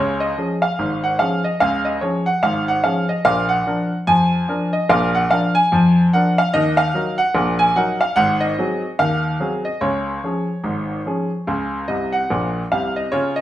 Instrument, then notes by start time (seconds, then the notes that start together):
grand piano
Already playing: C#2 C#3 C#5
0.20 D#5
0.38 F3 C#4 G#4
0.62 F5
0.79 G#1 G#2
1.04 F#5
1.19 F3 C#4 G#4 F5
1.44 D#5
1.60 C#2 C#3 F5
1.85 D#5
2.01 F3 C#4 G#4 C#5
2.26 F#5
2.43 G#1 G#2 F5
2.68 F#5
2.84 F3 C#4 G#4 F5
3.09 D#5
3.25 A#1 A#2 F5
3.49 F#5
3.66 F3 D4 A#4
4.07 F2 F3 G#5
4.48 F3 D4 A#4
4.73 D#5
4.89 A#1 A#2 F5
5.15 F#5
5.31 F3 D4 A#4 F5
5.55 G#5
5.72 F2 F3
6.13 F3 D4 A#4 F#5
6.38 F5
6.54 D#2 D#3 D#5
6.77 F5
6.94 F#3 D#4 A#4
7.18 F#5
7.35 A#1 A#2
7.59 G#5
7.76 F#3 D#4 A#4 F#5
8.01 F5
8.16 G#1 G#2 F#5
8.41 D#5
8.59 F#3 C4 G#4
8.99 D#2 D#3 F5
9.40 F#3 C4 G#4
9.65 D#5
9.81 C#2 C#3 C#5
10.24 F3 C#4 G#4
10.64 G#1 G#2
11.06 F3 C#4 G#4
11.47 C#2 C#3
11.88 C2 C3 D#5
12.13 F#5
12.30 A#1 A#2
12.72 C2 C3 F5
12.96 D#5
13.12 C#3 F4 C#5
13.36 D#5